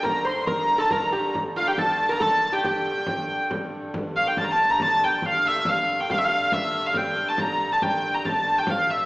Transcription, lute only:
\new Staff \with { instrumentName = "Lute" } { \time 3/4 \key g \dorian \tempo 4 = 139 bes'8 c''8 bes'8. a'16 bes'8 g'8 | r8 f'16 g'16 a'8. bes'16 a'8. g'16 | g'2 r4 | r2. |
r2. | r2. | r2. | }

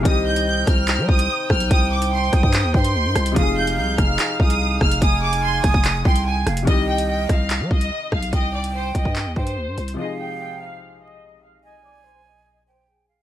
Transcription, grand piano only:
\new Staff \with { instrumentName = "Grand piano" } { \clef bass \time 4/4 \key c \minor \tempo 4 = 145 <c ees g ees' g'>1~ | <c ees g ees' g'>1 | <c f aes ees' aes'>1~ | <c f aes ees' aes'>1 |
<c ees g ees' g'>1~ | <c ees g ees' g'>1 | <c f aes ees' aes'>1~ | <c f aes ees' aes'>1 | }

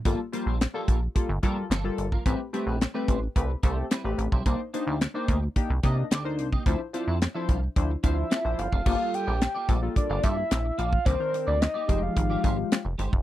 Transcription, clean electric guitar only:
\new Staff \with { instrumentName = "Clean electric guitar" } { \time 4/4 \key g \dorian \tempo 4 = 109 <f bes f' a'>16 r16 <f bes f' bes'>16 <f bes f' a'>16 r16 <f bes f' a'>16 <f bes f' bes'>16 r8. <f bes f' bes'>16 r16 <f bes f' a'>16 r8 <f bes f' bes'>16 | <g c' e' b'>16 r16 <g c' e' c''>16 <g c' e' b'>16 r16 <g c' e' b'>16 <g c' e' c''>16 r8. <g c' e' c''>16 r16 <g c' e' b'>16 r8 <g c' e' c''>16 | <bes ees' g' d''>16 r16 <bes ees' g' ees''>16 <bes ees' g' d''>16 r16 <bes ees' g' d''>16 <bes ees' g' ees''>16 r8. <bes ees' g' ees''>16 r16 <bes ees' g' d''>16 r8 <bes ees' g' ees''>16 | <c' f' a' e''>16 r16 <c' f' a' f''>16 <c' f' a' e''>16 r16 <c' f' a' e''>16 <c' f' a' f''>16 r8. <c' f' a' f''>16 r16 <c' f' a' e''>16 r8 <c' f' a' f''>16 |
\key f \dorian <bes f' a' d''>16 r8 <bes f' a' d''>16 r16 <bes f' a' d''>16 <bes f' a' d''>16 r8 <bes f' a' f''>16 <bes f' a' d''>16 r8. <bes f' a' d''>16 r16 | <bes ees' g' d''>16 r8 <bes ees' g' d''>16 r16 <bes ees' g' d''>16 <aes ees' g' c''>16 r8 <aes ees' g' d''>16 <aes ees' g' c''>16 r8. <aes ees' g' c''>16 r16 | }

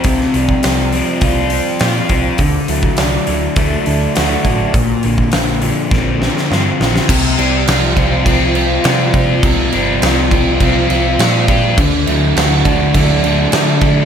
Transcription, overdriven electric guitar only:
\new Staff \with { instrumentName = "Overdriven electric guitar" } { \clef bass \time 4/4 \key d \minor \tempo 4 = 102 <c f c' f'>8 f8 f8 c'8 f'8 f8 f'8 c'8 | d8 fis8 d8 fis8 a8 d8 a8 fis8 | bes,8 d8 d8 f8 c'8 d8 c'8 f8 | c8 c'8 f8 f'8 c'8 f'8 f8 f'8 |
c8 c'8 f8 f'8 c'8 f'8 f8 f'8 | d8 fis8 d8 a8 fis8 a8 d8 a8 | }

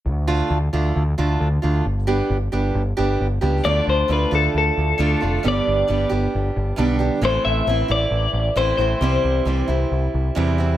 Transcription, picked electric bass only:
\new Staff \with { instrumentName = "Picked electric bass" } { \clef bass \time 4/4 \key d \dorian \tempo 4 = 134 d,4 d,8 d,8 d,8 d,8 d,8 d,8 | g,,4 g,,8 g,,8 g,,8 g,,8 g,,8 cis,8 | d,8 d,8 d,8 d,8 d,8 d,8 d,8 f,,8 | g,,8 g,,8 g,,8 g,,8 g,,8 g,,8 b,,4 |
a,,8 a,,8 a,,8 a,,8 a,,8 a,,8 a,,8 a,,8 | c,8 c,8 c,8 c,8 c,8 c,8 e,4 | }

